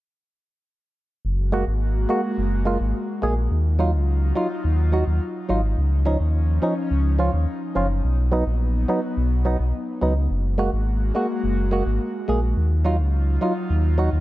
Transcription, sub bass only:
0, 0, Header, 1, 2, 480
1, 0, Start_track
1, 0, Key_signature, 6, "major"
1, 0, Tempo, 566038
1, 1058, Time_signature, 4, 2, 24, 8
1, 12045, End_track
2, 0, Start_track
2, 0, Title_t, "Sub bass"
2, 0, Program_c, 0, 38
2, 1058, Note_on_c, 0, 30, 102
2, 1389, Note_off_c, 0, 30, 0
2, 1418, Note_on_c, 0, 32, 94
2, 1749, Note_off_c, 0, 32, 0
2, 2017, Note_on_c, 0, 30, 92
2, 2349, Note_off_c, 0, 30, 0
2, 2376, Note_on_c, 0, 32, 94
2, 2488, Note_off_c, 0, 32, 0
2, 2736, Note_on_c, 0, 34, 94
2, 2958, Note_off_c, 0, 34, 0
2, 2978, Note_on_c, 0, 39, 101
2, 3340, Note_on_c, 0, 37, 89
2, 3353, Note_off_c, 0, 39, 0
2, 3670, Note_off_c, 0, 37, 0
2, 3938, Note_on_c, 0, 39, 101
2, 4269, Note_off_c, 0, 39, 0
2, 4300, Note_on_c, 0, 39, 89
2, 4410, Note_off_c, 0, 39, 0
2, 4660, Note_on_c, 0, 32, 99
2, 4880, Note_off_c, 0, 32, 0
2, 4900, Note_on_c, 0, 37, 104
2, 5230, Note_off_c, 0, 37, 0
2, 5259, Note_on_c, 0, 39, 87
2, 5590, Note_off_c, 0, 39, 0
2, 5859, Note_on_c, 0, 37, 98
2, 6190, Note_off_c, 0, 37, 0
2, 6219, Note_on_c, 0, 39, 85
2, 6329, Note_off_c, 0, 39, 0
2, 6579, Note_on_c, 0, 30, 96
2, 6799, Note_off_c, 0, 30, 0
2, 6819, Note_on_c, 0, 35, 107
2, 7150, Note_off_c, 0, 35, 0
2, 7178, Note_on_c, 0, 34, 93
2, 7509, Note_off_c, 0, 34, 0
2, 7777, Note_on_c, 0, 35, 105
2, 8109, Note_off_c, 0, 35, 0
2, 8138, Note_on_c, 0, 35, 88
2, 8249, Note_off_c, 0, 35, 0
2, 8497, Note_on_c, 0, 37, 90
2, 8718, Note_off_c, 0, 37, 0
2, 8737, Note_on_c, 0, 30, 103
2, 9069, Note_off_c, 0, 30, 0
2, 9097, Note_on_c, 0, 32, 94
2, 9429, Note_off_c, 0, 32, 0
2, 9698, Note_on_c, 0, 30, 91
2, 10029, Note_off_c, 0, 30, 0
2, 10058, Note_on_c, 0, 32, 93
2, 10169, Note_off_c, 0, 32, 0
2, 10418, Note_on_c, 0, 34, 97
2, 10639, Note_off_c, 0, 34, 0
2, 10659, Note_on_c, 0, 39, 100
2, 11019, Note_on_c, 0, 37, 91
2, 11032, Note_off_c, 0, 39, 0
2, 11350, Note_off_c, 0, 37, 0
2, 11618, Note_on_c, 0, 39, 102
2, 11949, Note_off_c, 0, 39, 0
2, 11979, Note_on_c, 0, 39, 88
2, 12045, Note_off_c, 0, 39, 0
2, 12045, End_track
0, 0, End_of_file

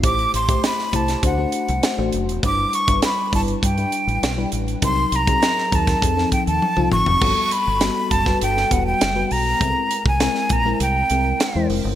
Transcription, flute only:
0, 0, Header, 1, 2, 480
1, 0, Start_track
1, 0, Tempo, 598802
1, 28, Time_signature, 4, 2, 24, 8
1, 9581, End_track
2, 0, Start_track
2, 0, Title_t, "Flute"
2, 0, Program_c, 0, 73
2, 38, Note_on_c, 0, 86, 100
2, 257, Note_off_c, 0, 86, 0
2, 283, Note_on_c, 0, 84, 88
2, 500, Note_off_c, 0, 84, 0
2, 530, Note_on_c, 0, 83, 89
2, 766, Note_on_c, 0, 81, 84
2, 778, Note_off_c, 0, 83, 0
2, 998, Note_off_c, 0, 81, 0
2, 1005, Note_on_c, 0, 78, 75
2, 1685, Note_off_c, 0, 78, 0
2, 1970, Note_on_c, 0, 86, 103
2, 2202, Note_on_c, 0, 85, 95
2, 2214, Note_off_c, 0, 86, 0
2, 2436, Note_off_c, 0, 85, 0
2, 2439, Note_on_c, 0, 83, 90
2, 2658, Note_off_c, 0, 83, 0
2, 2684, Note_on_c, 0, 81, 84
2, 2736, Note_off_c, 0, 81, 0
2, 2921, Note_on_c, 0, 79, 79
2, 3603, Note_off_c, 0, 79, 0
2, 3883, Note_on_c, 0, 84, 99
2, 4133, Note_on_c, 0, 82, 98
2, 4145, Note_off_c, 0, 84, 0
2, 4610, Note_on_c, 0, 81, 79
2, 4622, Note_off_c, 0, 82, 0
2, 5065, Note_off_c, 0, 81, 0
2, 5070, Note_on_c, 0, 79, 79
2, 5181, Note_off_c, 0, 79, 0
2, 5187, Note_on_c, 0, 81, 85
2, 5522, Note_off_c, 0, 81, 0
2, 5548, Note_on_c, 0, 85, 96
2, 6030, Note_on_c, 0, 83, 103
2, 6042, Note_off_c, 0, 85, 0
2, 6500, Note_on_c, 0, 81, 91
2, 6512, Note_off_c, 0, 83, 0
2, 6744, Note_off_c, 0, 81, 0
2, 6753, Note_on_c, 0, 79, 89
2, 6994, Note_on_c, 0, 78, 81
2, 7006, Note_off_c, 0, 79, 0
2, 7103, Note_off_c, 0, 78, 0
2, 7108, Note_on_c, 0, 79, 91
2, 7469, Note_on_c, 0, 82, 94
2, 7481, Note_off_c, 0, 79, 0
2, 8068, Note_off_c, 0, 82, 0
2, 8077, Note_on_c, 0, 80, 90
2, 8437, Note_on_c, 0, 82, 89
2, 8449, Note_off_c, 0, 80, 0
2, 8667, Note_off_c, 0, 82, 0
2, 8671, Note_on_c, 0, 79, 81
2, 9356, Note_off_c, 0, 79, 0
2, 9581, End_track
0, 0, End_of_file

